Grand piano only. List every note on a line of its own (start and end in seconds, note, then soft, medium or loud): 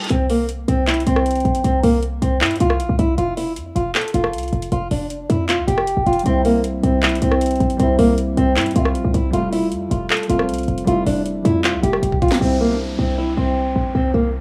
0.00 0.12 G3 medium
0.00 0.13 A3 medium
0.00 0.12 C4 medium
0.00 0.12 E4 loud
0.00 0.13 F4 medium
0.00 0.12 G4 medium
6.23 6.74 G3 loud
6.23 6.76 C4 medium
6.28 6.77 E4 loud
6.81 7.16 G3 medium
6.81 7.17 C4 medium
6.86 7.18 E4 medium
7.20 7.71 G3 medium
7.20 7.72 C4 medium
7.25 7.73 E4 medium
7.77 8.28 G3 loud
7.77 8.30 C4 medium
7.82 8.31 E4 loud
8.35 8.70 G3 medium
8.35 8.71 C4 medium
8.40 8.72 E4 medium
8.74 9.25 G3 medium
8.74 9.26 C4 medium
8.78 9.27 E5 medium
9.31 9.82 G3 loud
9.31 9.83 A3 medium
9.35 9.84 F4 loud
9.89 10.23 G3 medium
9.89 10.24 A3 medium
9.94 10.26 F4 medium
10.28 10.79 G3 medium
10.28 10.80 A3 medium
10.33 10.81 C4 medium
10.84 11.36 G3 loud
10.84 11.37 A3 medium
10.89 11.38 E4 loud
11.43 11.77 G3 medium
11.43 11.78 A3 medium
11.47 11.80 F4 medium
11.81 12.32 G3 medium
11.81 12.33 A3 medium
11.86 12.35 G4 medium
12.39 12.65 G3 loud
12.39 12.66 C4 medium
12.44 12.67 E4 loud
12.68 12.94 G3 medium
12.68 12.95 C4 medium
12.73 12.96 D4 medium
12.96 13.64 G3 medium
12.96 13.65 C4 medium
13.01 13.66 E4 medium